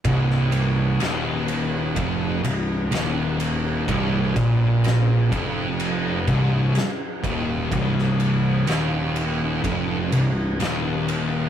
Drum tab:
RD |x-x-x-x-x-x-x-x-|x-x-x-x-x-x-x-x-|x-x-x-x-x-x-x-x-|
SD |-o--o-------o---|----o-------o---|-o--o-------o---|
BD |o-------o-------|o-o---o---o---o-|o-------o-------|